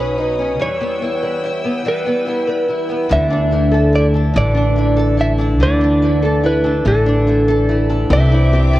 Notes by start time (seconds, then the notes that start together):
Already playing: B1 B2 F#3 C#4 D#4 B4 C#5 B5 D#6
0.18 D#4
0.24 B4
0.39 C#4
0.59 E2 E3 G3 B4 C#5 G5 E6
0.81 G3 B3
1.02 B3 E4
1.23 G3 B4
1.44 E4
1.64 B3
1.85 E3 G3 B4
2.06 G3 B3
2.26 B3 E4
2.47 G3 B4
2.68 E4
2.89 B3
3.09 D2 D3 E3 E5
3.30 D4
3.51 A3 E4
3.71 A4
3.93 A3 E4 D5
4.14 D4 A4
4.34 A1 D3 E3 D5
4.55 D4
4.76 A3 E4
4.97 A4
5.17 A3 E4 E5
5.38 D4 A4
5.60 D2 D3 E3 D5
5.81 D4
6.02 A3 E4
6.22 A4
6.43 A3 E4 B4
6.64 D4 A4
6.85 A1 D3 E3 A4
7.06 D4
7.27 A3 E4
7.48 A4
7.69 A3 E4
7.89 D4 A4
8.10 C2 E3 C4 C5 E5 D6
8.32 D4 E4
8.53 C4 G4
8.73 G4 D5